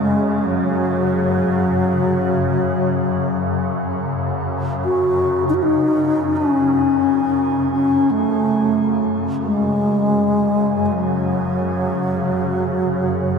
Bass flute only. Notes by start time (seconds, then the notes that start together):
0.00 G#3
0.38 G#3
0.45 F#3
4.85 F#4
5.49 D#4
5.54 F#4
5.63 D#4
6.37 C#4
7.73 C#4
8.11 A3
9.45 G#3
10.86 G#3
10.92 F#3